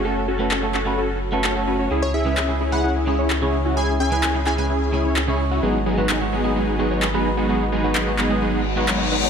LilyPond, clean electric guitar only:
\new Staff \with { instrumentName = "Clean electric guitar" } { \time 4/4 \key cis \minor \tempo 4 = 129 <a cis' fis' a'>8 r16 <a cis' fis' a'>16 r16 <a cis' fis' a'>16 r16 <a cis' fis' b'>16 r8. <a cis' fis' a'>8 <a cis' fis' a'>8. | <cis gis cis' e' gis'>8 r16 <cis gis cis' e' gis'>16 r16 <cis gis cis' e' gis'>16 r16 <cis gis cis' e' b'>16 r8 <cis gis cis' e' gis'>16 r8 <cis gis cis' e' cis''>8. | <cis gis cis' e' gis'>8 r16 <cis gis cis' e' gis'>16 r16 <cis gis cis' e' gis'>16 r16 <cis gis cis' e' b'>16 r8 <cis gis cis' e' gis'>16 r8 <cis gis cis' e' cis''>8. | <gis, gis b dis' fis'>8 r16 <gis, gis b dis' fis'>16 r16 <gis, gis b dis' fis'>16 r16 <gis, gis b dis' gis'>16 r8 <gis, gis b dis' fis'>16 r8 <gis, gis b dis' b'>8. |
<gis, gis b dis' fis'>8 r16 <gis, gis b dis' fis'>16 r16 <gis, gis b dis' fis'>16 r16 <gis, gis b dis' gis'>16 r8. <gis, gis b dis' fis'>8 <gis, gis b dis' fis'>8. | }